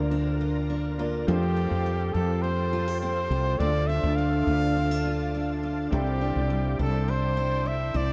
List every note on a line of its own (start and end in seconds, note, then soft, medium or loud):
0.00 1.24 D2 loud
0.00 1.28 D3 medium
0.00 0.94 A#3 medium
0.00 1.33 A#3 medium
0.00 0.10 D4 medium
0.00 0.95 D4 medium
0.00 0.40 F4 medium
0.00 0.95 F4 medium
0.00 3.56 F4 medium
0.00 1.26 A#4 medium
0.00 0.96 D5 medium
0.00 1.26 D5 medium
0.00 1.26 A#5 medium
0.11 0.69 D4 medium
0.41 0.99 F4 medium
0.70 1.34 D4 medium
0.98 1.28 A#3 medium
0.98 1.28 D4 medium
0.98 2.14 F4 medium
0.98 1.26 F4 medium
0.98 1.29 D5 medium
1.27 1.68 F2 loud
1.27 3.60 F3 medium
1.27 3.55 A3 medium
1.27 3.56 F4 medium
1.27 2.15 G4 loud
1.27 3.57 G4 medium
1.27 5.87 A4 medium
1.27 3.57 C5 medium
1.27 3.57 G5 medium
1.57 2.42 C4 medium
1.71 2.11 F2 loud
1.86 4.18 A3 medium
2.14 3.27 F2 loud
2.14 2.72 G4 medium
2.14 2.44 A4 medium
2.42 3.01 C4 medium
2.42 3.00 C5 loud
2.73 2.88 F4 medium
2.88 3.30 G4 medium
3.00 3.66 C4 medium
3.00 3.60 C5 loud
3.30 3.57 C2 medium
3.30 3.66 G4 medium
3.58 4.00 D2 loud
3.58 5.96 D3 medium
3.58 5.87 A3 medium
3.58 5.88 D4 medium
3.58 5.89 F4 medium
3.58 5.88 F4 medium
3.58 3.89 D5 loud
3.58 8.13 D5 medium
3.58 5.89 D5 medium
3.58 5.89 A5 medium
3.87 4.76 D4 medium
3.87 4.18 E5 loud
4.03 4.44 D2 loud
4.16 5.98 A3 medium
4.16 5.62 F5 loud
4.47 5.88 D2 loud
4.47 5.04 F4 medium
4.76 4.91 C4 medium
4.91 5.33 D4 soft
5.05 5.62 F4 medium
5.34 6.21 D4 medium
5.63 5.98 F4 medium
5.91 6.32 C2 loud
5.91 8.13 C3 medium
5.91 8.13 C4 medium
5.91 8.13 E4 medium
5.91 8.13 G4 medium
5.91 6.76 G4 loud
5.91 8.13 C5 medium
5.91 8.13 D5 medium
5.91 8.13 G5 medium
6.21 7.08 D4 medium
6.36 6.76 C2 loud
6.50 8.13 G3 medium
6.79 7.91 C2 loud
6.79 7.36 E4 medium
6.79 7.11 A4 medium
7.08 7.65 D4 medium
7.08 7.69 C5 loud
7.37 7.93 E4 medium
7.65 8.13 D4 medium
7.65 7.98 E5 loud
7.94 8.13 C2 medium
7.94 8.13 E4 medium
7.94 8.13 D5 loud